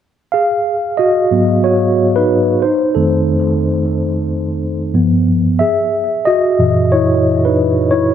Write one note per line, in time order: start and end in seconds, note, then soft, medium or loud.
0.32 0.95 G#4 medium
0.32 1.00 F5 medium
0.97 1.60 F#4 medium
0.97 1.60 D#5 medium
1.31 2.26 G#2 soft
1.31 2.26 F#3 soft
1.31 2.26 B3 medium
1.64 2.14 F#4 medium
1.64 2.13 C#5 medium
2.16 2.60 D#4 medium
2.16 2.59 B4 medium
2.62 2.94 D#4 medium
2.62 2.97 C5 medium
2.95 3.42 F2 soft
2.95 3.42 D#3 soft
2.95 3.42 A3 soft
2.95 3.58 C4 soft
2.95 3.57 A4 medium
4.94 5.40 G2 medium
4.94 5.40 F3 soft
4.94 5.40 B3 medium
5.59 6.22 G#4 medium
5.59 6.27 E5 medium
6.25 6.88 F#4 medium
6.25 6.87 D#5 loud
6.59 8.14 F#2 soft
6.59 8.14 A#2 medium
6.59 8.14 E3 soft
6.92 7.41 E4 medium
6.92 7.46 C#5 medium
7.45 7.88 D#4 medium
7.45 7.88 B4 medium
7.91 8.04 E4 medium
7.91 8.03 C#5 medium